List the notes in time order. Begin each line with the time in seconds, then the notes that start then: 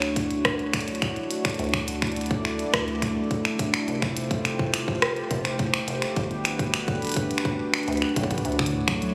Already playing: D2 A3 D4 E4 F#4 C#5
0.02 finger snap, closed hi-hat
0.16 kick, closed hi-hat
0.31 closed hi-hat
0.45 finger snap, kick, cross-stick, closed hi-hat
0.59 closed hi-hat
0.73 finger snap, kick, closed hi-hat
0.81 closed hi-hat
0.88 closed hi-hat
0.95 closed hi-hat
1.02 finger snap, kick, closed hi-hat
1.16 closed hi-hat
1.31 closed hi-hat
1.45 finger snap, kick, closed hi-hat
1.50 closed hi-hat
1.54 closed hi-hat
1.59 D2 D5, closed hi-hat
1.64 closed hi-hat
1.69 closed hi-hat
1.74 finger snap, kick, closed hi-hat
1.88 closed hi-hat
2.02 finger snap, kick, closed hi-hat
2.07 closed hi-hat
2.12 closed hi-hat
2.16 closed hi-hat
2.21 closed hi-hat
2.26 closed hi-hat
2.31 kick, closed hi-hat
2.45 finger snap
2.59 closed hi-hat
2.74 D2, finger snap, kick, cross-stick, closed hi-hat
2.88 closed hi-hat
3.02 finger snap, kick, closed hi-hat
3.31 kick, closed hi-hat
3.45 finger snap, closed hi-hat
3.59 kick, closed hi-hat
3.74 finger snap, closed hi-hat
3.88 F1 F4 G4 C5, closed hi-hat
4.02 finger snap, kick, closed hi-hat
4.17 closed hi-hat
4.31 kick, closed hi-hat
4.45 finger snap, closed hi-hat
4.59 kick
4.74 finger snap, closed hi-hat
4.88 kick
5.02 finger snap, cross-stick, closed hi-hat
5.16 closed hi-hat
5.31 F1, kick, closed hi-hat
5.45 finger snap, closed hi-hat
5.59 kick, closed hi-hat
5.74 finger snap, closed hi-hat
5.88 F1, closed hi-hat
6.02 finger snap, closed hi-hat
6.16 G1 D4 F#4 B4, kick, closed hi-hat
6.31 closed hi-hat
6.45 finger snap, closed hi-hat
6.59 kick, closed hi-hat
6.74 finger snap, closed hi-hat
6.88 kick, closed hi-hat
7.02 closed hi-hat
7.05 closed hi-hat
7.07 closed hi-hat
7.09 closed hi-hat
7.12 closed hi-hat
7.14 closed hi-hat
7.16 kick, closed hi-hat
7.31 closed hi-hat
7.38 finger snap
7.45 kick, closed hi-hat
7.74 finger snap, closed hi-hat
7.78 closed hi-hat
7.83 closed hi-hat
7.88 D2, closed hi-hat
7.93 closed hi-hat
7.97 closed hi-hat
8.02 finger snap
8.09 closed hi-hat
8.16 B1, kick, closed hi-hat
8.24 kick, closed hi-hat
8.31 kick, closed hi-hat
8.38 kick, closed hi-hat
8.45 D2 A3 E4 C#5, closed hi-hat
8.52 closed hi-hat
8.59 D3, finger snap, kick, closed hi-hat
8.66 closed hi-hat
8.74 A2
8.88 F#3, finger snap, kick, closed hi-hat
9.02 F#3, closed hi-hat